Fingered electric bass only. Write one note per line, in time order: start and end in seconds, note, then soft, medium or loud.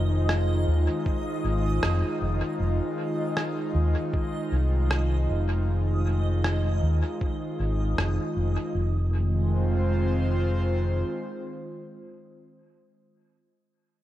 0.00 0.64 F1 medium
0.68 0.86 D#2 medium
1.44 1.79 G#1 medium
1.83 2.01 F1 medium
2.21 2.40 F1 medium
2.60 2.78 F1 medium
3.75 3.93 D#2 medium
4.52 5.25 C2 medium
5.29 6.79 F1 medium
6.83 7.01 D#2 medium
7.59 7.94 G#1 medium
7.98 8.16 F1 medium
8.36 8.55 F1 medium
8.75 11.02 F1 medium